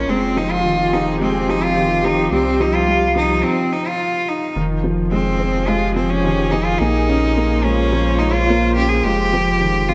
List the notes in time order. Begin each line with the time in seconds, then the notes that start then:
Already playing: A#3 C#4 F4 C5
0.07 F1 F3 G#3 C4
0.24 C4
0.37 F3 D#4
0.51 F4 G#4
0.58 G4
0.65 D#3
0.93 F3 D#4
1.21 G#3 C4
1.48 F3 D#4
1.63 F4
1.77 D#3
2.04 F3 D#4
2.31 C2 C3 G3 C4
2.51 G3
2.60 F3 D#4
2.75 F4
2.88 G3
3.16 F3 D#4
3.33 D#4
3.44 C4
3.73 D#4
3.88 F4
4.29 D#4
4.56 F1 D#3 F3
4.84 F3
5.12 G#3 C4
5.38 C4 G#4
5.57 G4
5.68 G#3 F4
5.96 F3 C4
6.10 C#4
6.25 D#3
6.51 F3 D#4
6.65 F4
6.79 A#1 A#3 D#4
7.09 C#4
7.18 F4
7.37 A#3
7.55 C5
7.64 G#3 C#4
7.82 C#5
7.93 F3
8.19 G#3 D#4
8.33 F4
8.50 A#3
8.76 C#4 G4
8.89 G#4
9.04 F1 F3 G#3 G4
9.30 F3 G#3
9.61 D#3
9.89 F3 F4